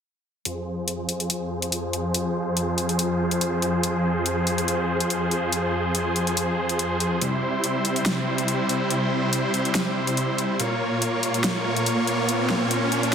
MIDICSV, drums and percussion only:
0, 0, Header, 1, 2, 480
1, 0, Start_track
1, 0, Key_signature, -4, "minor"
1, 0, Tempo, 422535
1, 516, Time_signature, 4, 2, 24, 8
1, 14937, End_track
2, 0, Start_track
2, 0, Title_t, "Drums"
2, 515, Note_on_c, 9, 42, 70
2, 629, Note_off_c, 9, 42, 0
2, 996, Note_on_c, 9, 42, 76
2, 1109, Note_off_c, 9, 42, 0
2, 1235, Note_on_c, 9, 42, 49
2, 1348, Note_off_c, 9, 42, 0
2, 1364, Note_on_c, 9, 42, 44
2, 1475, Note_off_c, 9, 42, 0
2, 1475, Note_on_c, 9, 42, 75
2, 1589, Note_off_c, 9, 42, 0
2, 1844, Note_on_c, 9, 42, 51
2, 1956, Note_off_c, 9, 42, 0
2, 1956, Note_on_c, 9, 42, 73
2, 2070, Note_off_c, 9, 42, 0
2, 2197, Note_on_c, 9, 42, 48
2, 2310, Note_off_c, 9, 42, 0
2, 2436, Note_on_c, 9, 42, 73
2, 2550, Note_off_c, 9, 42, 0
2, 2916, Note_on_c, 9, 42, 73
2, 3030, Note_off_c, 9, 42, 0
2, 3156, Note_on_c, 9, 42, 48
2, 3270, Note_off_c, 9, 42, 0
2, 3285, Note_on_c, 9, 42, 44
2, 3396, Note_off_c, 9, 42, 0
2, 3396, Note_on_c, 9, 42, 72
2, 3510, Note_off_c, 9, 42, 0
2, 3764, Note_on_c, 9, 42, 50
2, 3876, Note_off_c, 9, 42, 0
2, 3876, Note_on_c, 9, 42, 69
2, 3990, Note_off_c, 9, 42, 0
2, 4116, Note_on_c, 9, 42, 48
2, 4230, Note_off_c, 9, 42, 0
2, 4356, Note_on_c, 9, 42, 71
2, 4469, Note_off_c, 9, 42, 0
2, 4836, Note_on_c, 9, 42, 76
2, 4950, Note_off_c, 9, 42, 0
2, 5076, Note_on_c, 9, 42, 49
2, 5190, Note_off_c, 9, 42, 0
2, 5205, Note_on_c, 9, 42, 45
2, 5317, Note_off_c, 9, 42, 0
2, 5317, Note_on_c, 9, 42, 73
2, 5430, Note_off_c, 9, 42, 0
2, 5685, Note_on_c, 9, 42, 50
2, 5797, Note_off_c, 9, 42, 0
2, 5797, Note_on_c, 9, 42, 69
2, 5910, Note_off_c, 9, 42, 0
2, 6037, Note_on_c, 9, 42, 46
2, 6150, Note_off_c, 9, 42, 0
2, 6276, Note_on_c, 9, 42, 69
2, 6390, Note_off_c, 9, 42, 0
2, 6756, Note_on_c, 9, 42, 70
2, 6870, Note_off_c, 9, 42, 0
2, 6996, Note_on_c, 9, 42, 45
2, 7110, Note_off_c, 9, 42, 0
2, 7125, Note_on_c, 9, 42, 45
2, 7236, Note_off_c, 9, 42, 0
2, 7236, Note_on_c, 9, 42, 72
2, 7350, Note_off_c, 9, 42, 0
2, 7605, Note_on_c, 9, 42, 49
2, 7716, Note_off_c, 9, 42, 0
2, 7716, Note_on_c, 9, 42, 69
2, 7830, Note_off_c, 9, 42, 0
2, 7956, Note_on_c, 9, 42, 44
2, 8070, Note_off_c, 9, 42, 0
2, 8196, Note_on_c, 9, 42, 69
2, 8310, Note_off_c, 9, 42, 0
2, 8675, Note_on_c, 9, 42, 71
2, 8789, Note_off_c, 9, 42, 0
2, 8915, Note_on_c, 9, 42, 47
2, 9029, Note_off_c, 9, 42, 0
2, 9044, Note_on_c, 9, 42, 42
2, 9155, Note_off_c, 9, 42, 0
2, 9155, Note_on_c, 9, 38, 103
2, 9155, Note_on_c, 9, 42, 68
2, 9269, Note_off_c, 9, 38, 0
2, 9269, Note_off_c, 9, 42, 0
2, 9523, Note_on_c, 9, 42, 46
2, 9635, Note_off_c, 9, 42, 0
2, 9635, Note_on_c, 9, 42, 65
2, 9748, Note_off_c, 9, 42, 0
2, 9876, Note_on_c, 9, 42, 45
2, 9989, Note_off_c, 9, 42, 0
2, 10116, Note_on_c, 9, 42, 66
2, 10229, Note_off_c, 9, 42, 0
2, 10596, Note_on_c, 9, 42, 71
2, 10710, Note_off_c, 9, 42, 0
2, 10837, Note_on_c, 9, 42, 45
2, 10950, Note_off_c, 9, 42, 0
2, 10965, Note_on_c, 9, 42, 43
2, 11076, Note_off_c, 9, 42, 0
2, 11076, Note_on_c, 9, 38, 105
2, 11076, Note_on_c, 9, 42, 69
2, 11190, Note_off_c, 9, 38, 0
2, 11190, Note_off_c, 9, 42, 0
2, 11444, Note_on_c, 9, 42, 48
2, 11556, Note_off_c, 9, 42, 0
2, 11556, Note_on_c, 9, 42, 65
2, 11670, Note_off_c, 9, 42, 0
2, 11796, Note_on_c, 9, 42, 45
2, 11910, Note_off_c, 9, 42, 0
2, 12036, Note_on_c, 9, 42, 72
2, 12150, Note_off_c, 9, 42, 0
2, 12517, Note_on_c, 9, 42, 71
2, 12630, Note_off_c, 9, 42, 0
2, 12757, Note_on_c, 9, 42, 47
2, 12871, Note_off_c, 9, 42, 0
2, 12886, Note_on_c, 9, 42, 45
2, 12996, Note_off_c, 9, 42, 0
2, 12996, Note_on_c, 9, 38, 103
2, 12996, Note_on_c, 9, 42, 74
2, 13110, Note_off_c, 9, 38, 0
2, 13110, Note_off_c, 9, 42, 0
2, 13365, Note_on_c, 9, 42, 49
2, 13477, Note_off_c, 9, 42, 0
2, 13477, Note_on_c, 9, 42, 68
2, 13591, Note_off_c, 9, 42, 0
2, 13717, Note_on_c, 9, 42, 46
2, 13830, Note_off_c, 9, 42, 0
2, 13957, Note_on_c, 9, 42, 72
2, 14071, Note_off_c, 9, 42, 0
2, 14197, Note_on_c, 9, 38, 55
2, 14310, Note_off_c, 9, 38, 0
2, 14437, Note_on_c, 9, 42, 73
2, 14550, Note_off_c, 9, 42, 0
2, 14676, Note_on_c, 9, 42, 50
2, 14790, Note_off_c, 9, 42, 0
2, 14805, Note_on_c, 9, 42, 46
2, 14919, Note_off_c, 9, 42, 0
2, 14937, End_track
0, 0, End_of_file